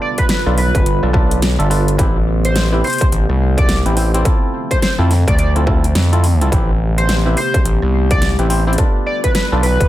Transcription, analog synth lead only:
0.01 0.15 D5 medium
0.18 0.25 B4 medium
0.30 0.41 B4 medium
0.58 1.03 B4 loud
2.45 2.62 C5 medium
2.84 3.06 C5 loud
3.58 3.76 D5 medium
4.71 4.78 C5 medium
4.82 4.93 C5 medium
5.28 5.35 D5 medium
5.39 5.50 D5 medium
6.98 7.15 C5 medium
7.37 7.58 C5 loud
8.11 8.28 D5 loud
9.06 9.20 D5 medium
9.24 9.31 B4 medium
9.35 9.46 B4 medium
9.63 9.88 B4 loud

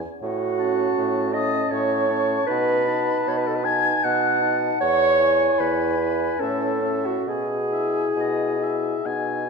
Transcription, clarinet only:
0.22 1.35 F#4 medium
1.33 1.72 D#5 medium
1.71 2.46 C#5 medium
2.47 3.29 B4 medium
3.28 3.39 C#5 medium
3.37 3.49 B4 medium
3.47 3.57 A4 medium
3.56 3.66 B4 medium
3.65 4.05 G#5 medium
4.04 4.80 F#5 medium
4.80 5.61 C#5 loud
5.60 6.41 B4 medium
6.40 7.07 A4 medium
7.06 7.30 F#4 medium
7.28 9.49 G#4 medium

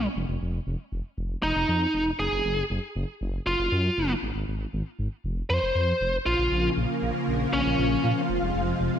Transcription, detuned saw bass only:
0.16 0.25 F1 loud
0.29 0.38 F1 loud
0.41 0.59 F1 medium
0.67 0.76 F1 loud
0.92 1.01 F1 medium
1.18 1.36 F1 medium
1.43 1.52 F1 medium
1.56 1.65 F1 loud
1.68 1.87 F2 medium
1.94 2.12 F1 medium
2.19 2.28 F#1 loud
2.32 2.41 F#1 loud
2.45 2.63 F#1 medium
2.70 2.79 F#1 loud
2.96 3.05 F#1 medium
3.21 3.39 F#1 medium
3.46 3.55 F#1 loud
3.59 3.68 F#1 loud
3.72 3.90 F#2 loud
3.97 4.15 F#1 medium
4.23 4.32 G#1 loud
4.35 4.44 G#1 loud
4.48 4.66 G#1 medium
4.73 4.82 G#1 loud
4.99 5.08 G#1 medium
5.24 5.42 F1 loud
5.50 5.59 F2 loud
5.62 5.71 F1 medium
5.75 5.93 F2 loud
6.01 6.19 F1 loud
6.26 6.35 A#1 loud
6.39 6.48 A#1 loud
6.51 6.69 A#1 medium
6.77 6.86 A#1 loud
7.02 7.11 A#1 medium
7.28 7.46 A#1 medium
7.53 7.62 A#1 loud
7.66 7.75 A#1 loud
7.79 7.97 A#1 loud
8.04 8.13 A#2 medium
8.29 8.38 F1 loud
8.42 8.51 F1 loud
8.55 8.73 F1 medium
8.80 8.89 F1 loud

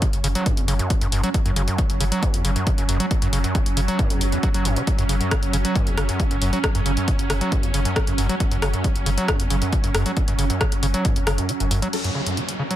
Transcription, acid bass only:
0.02 0.06 E3 medium
0.24 0.28 C#3 loud
0.35 0.48 F#3 loud
0.46 0.59 F#2 medium
0.57 0.66 E2 medium
0.68 0.74 C#3 medium
0.79 0.92 F#2 medium
0.90 0.94 E3 medium
1.01 1.07 F#2 medium
1.12 1.22 F#2 loud
1.24 1.29 F#3 loud
1.46 1.52 F#2 loud
1.56 1.63 C#3 medium
1.68 1.80 F#2 medium
1.78 1.82 E3 medium
2.00 2.04 C#3 loud
2.12 2.24 F#3 loud
2.23 2.35 F#2 medium
2.34 2.43 E2 medium
2.45 2.51 C#3 medium
2.56 2.68 F#2 medium
2.67 2.70 E3 medium
2.78 2.84 F#2 medium
2.89 2.98 F#2 loud
3.00 3.06 F#3 loud
3.22 3.28 F#2 loud
3.33 3.39 C#3 medium
3.44 3.56 F#2 medium
3.55 3.59 E3 medium
3.77 3.81 C#3 loud
3.88 4.01 F#3 loud
3.99 4.12 F#2 medium
4.10 4.23 E2 medium
4.21 4.27 F#1 medium
4.32 4.38 E2 medium
4.43 4.49 F#3 medium
4.54 4.67 F#3 medium
4.65 4.78 F#2 loud
4.76 4.82 C#3 medium
4.98 5.04 F#2 loud
5.09 5.15 C#3 medium
5.20 5.33 F#2 medium
5.31 5.35 E3 medium
5.53 5.57 C#3 loud
5.65 5.77 F#3 loud
5.76 5.88 F#2 medium
5.87 5.96 E2 medium
5.97 6.04 C#3 medium
6.09 6.21 F#2 medium
6.20 6.23 E3 medium
6.31 6.37 F#2 medium
6.42 6.51 F#2 loud
6.53 6.59 F#3 loud
6.75 6.81 F#2 loud
6.86 6.92 C#3 medium
6.97 7.09 F#2 medium
7.08 7.12 E3 medium
7.30 7.34 C#3 loud
7.41 7.53 F#3 loud
7.52 7.65 F#2 medium
7.63 7.72 E2 medium
7.74 7.80 C#3 medium
7.85 7.98 F#2 medium
7.96 8.00 E3 medium
8.07 8.13 F#2 medium
8.18 8.27 F#2 loud
8.29 8.35 F#3 loud
8.52 8.57 F#2 loud
8.62 8.68 C#3 medium
8.74 8.86 F#2 medium
8.84 8.88 E3 medium
9.06 9.10 C#3 loud
9.18 9.30 F#3 loud
9.28 9.41 F#2 medium
9.40 9.49 E2 medium
9.50 9.57 C#3 medium
9.62 9.74 F#2 medium
9.73 9.76 E3 medium
9.84 9.90 F#2 medium
9.95 10.04 F#2 loud
10.06 10.12 F#3 loud
10.28 10.34 F#2 loud
10.39 10.45 C#3 medium
10.50 10.62 F#2 medium
10.61 10.65 E3 medium
10.83 10.87 C#3 loud
10.94 11.06 F#3 loud
11.05 11.18 F#2 medium
11.16 11.25 E2 medium
11.27 11.33 C#3 medium
11.38 11.50 F#2 medium
11.49 11.53 E3 medium
11.60 11.66 F#2 medium
11.71 11.80 F#2 loud
11.82 11.88 F#3 loud
12.04 12.10 F#2 loud
12.15 12.21 C#3 medium
12.26 12.39 F#2 medium
12.37 12.41 E3 medium
12.59 12.63 C#3 loud
12.71 12.76 F#3 loud

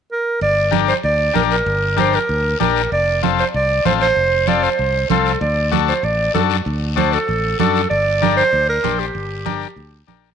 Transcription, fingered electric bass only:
0.41 0.91 G1 medium
1.04 1.29 D2 medium
1.35 1.60 A#1 medium
1.66 2.16 G1 loud
2.29 2.54 D2 medium
2.61 2.86 A#1 medium
2.92 3.42 F1 medium
3.54 3.79 C2 medium
3.85 4.10 A1 medium
4.16 4.66 F1 loud
4.79 5.04 C2 medium
5.10 5.35 C2 medium
5.41 5.91 D2 loud
6.03 6.28 A1 medium
6.35 6.60 F#2 loud
6.66 7.16 D2 loud
7.29 7.53 A1 medium
7.60 7.85 F#2 medium
7.91 8.41 G1 loud
8.53 8.78 D2 medium
8.84 9.09 A#1 medium
9.15 9.65 G1 medium
9.76 10.02 D2 medium
10.08 10.33 A#1 medium

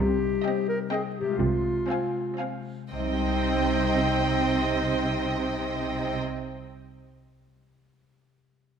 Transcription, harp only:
0.00 1.20 C3 soft
0.00 1.35 G3 soft
0.00 1.37 D#4 soft
0.00 1.33 C5 soft
1.21 2.85 C3 soft
1.26 2.88 G#3 soft
1.30 2.90 F4 soft
1.35 3.19 C5 soft
2.92 6.82 C3 soft
2.99 6.56 G3 soft
3.06 6.33 C4 soft
3.13 6.40 G4 soft
3.20 6.47 C5 soft
3.27 6.54 G5 soft

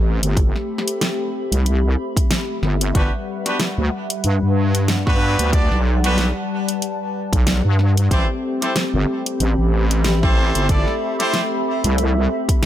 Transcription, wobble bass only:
0.00 0.20 A1 medium
0.22 0.52 G1 medium
1.52 1.96 C2 medium
2.63 2.93 G1 medium
2.95 3.10 G1 medium
3.78 3.90 D2 loud
4.24 4.40 G2 loud
4.43 5.36 G2 medium
5.39 5.68 D2 medium
5.71 6.33 B1 medium
7.33 7.62 B1 medium
7.65 8.09 G2 medium
8.11 8.27 A1 medium
8.94 9.05 G1 loud
9.40 9.56 A1 medium
9.58 10.52 A1 loud
10.55 10.85 G1 medium
11.84 12.28 C2 medium

